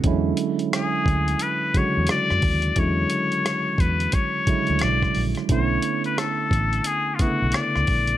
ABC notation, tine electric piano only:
X:1
M:4/4
L:1/8
Q:"Swing 16ths" 1/4=88
K:Emix
V:1 name="Tine electric piano" clef=bass
[D,F,G,CE]3 z2 [C,D,F,G,F]2 z | [D,F,G,CE]3 z2 [C,D,F,G,E]2 z | [D,A,B,CE]3 z2 [C,D,A,B,E]2 z |]